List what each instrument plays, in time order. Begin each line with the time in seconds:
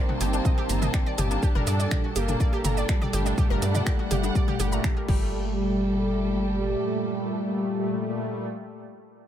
Already playing: analog synth pad D#3 G3 A#3, analog polysynth C4, string section D#4 A#4 G5 A5
0.09 synth arpeggio sound F#4, mid tom
0.21 analog synth bass G1, synth arpeggio sound G4, open hi-hat, shaker
0.33 synth arpeggio sound D4, shaker
0.45 synth arpeggio sound D#5, kick, mid tom, shaker
0.58 synth arpeggio sound G4
0.69 analog synth bass G1, synth arpeggio sound A#5, open hi-hat, shaker
0.82 synth arpeggio sound D#5, mid tom, shaker
0.94 synth arpeggio sound D5, finger snap, kick, shaker
1.06 synth arpeggio sound D5
1.18 analog synth bass G1, analog synth pad D#3 G3 A#3, synth arpeggio sound G4, open hi-hat, mid tom, shaker
1.31 synth arpeggio sound D4, shaker
1.43 analog synth pad A#2 G3 A4, string section D4 A4, analog polysynth D4, synth arpeggio sound G4, kick, shaker
1.55 analog synth bass G1, synth arpeggio sound A#4, mid tom
1.67 analog synth bass G2, synth arpeggio sound D5, open hi-hat, shaker
1.80 synth arpeggio sound D5, shaker
1.91 synth arpeggio sound D5, finger snap, kick, mid tom, shaker
2.04 synth arpeggio sound F#4
2.16 analog synth bass G1, analog polysynth A#3, synth arpeggio sound G4, open hi-hat, shaker
2.28 synth arpeggio sound D4, mid tom, shaker
2.40 synth arpeggio sound D5, kick, shaker
2.53 synth arpeggio sound G4
2.65 analog synth bass G1, synth arpeggio sound A#5, open hi-hat, mid tom, shaker
2.77 synth arpeggio sound D5, shaker
2.89 analog polysynth G3, synth arpeggio sound D5, finger snap, kick, shaker
3.02 synth arpeggio sound D5, mid tom
3.13 analog synth bass G1, analog synth pad A#2 G3 A3, synth arpeggio sound G4, open hi-hat, shaker
3.26 synth arpeggio sound D4, shaker
3.38 analog synth pad A#2 G3 A3, analog polysynth G3, synth arpeggio sound G4, string section F#5, kick, mid tom, shaker
3.50 analog synth bass G1, synth arpeggio sound A#4
3.62 analog synth bass G2, synth arpeggio sound D5, open hi-hat, shaker
3.75 synth arpeggio sound D5, mid tom, shaker
3.86 synth arpeggio sound D5, finger snap, kick, shaker
3.99 synth arpeggio sound F#4
4.11 analog synth bass G1, synth arpeggio sound G4, open hi-hat, mid tom, shaker
4.23 synth arpeggio sound D4, shaker
4.35 synth arpeggio sound D5, kick, shaker
4.48 synth arpeggio sound G4, mid tom
4.60 analog synth bass G1, analog synth pad A#2 G3 A3, synth arpeggio sound G4, open hi-hat, shaker
4.72 synth arpeggio sound A#5, shaker
4.84 synth arpeggio sound G4, finger snap, kick, mid tom, shaker
4.97 analog synth pad A#2 G3 A3, synth arpeggio sound A#4
5.08 analog synth bass G1, analog synth pad A#2 G3 A3, analog polysynth G3, string section G3 G4 A4, synth arpeggio sound G4, kick, crash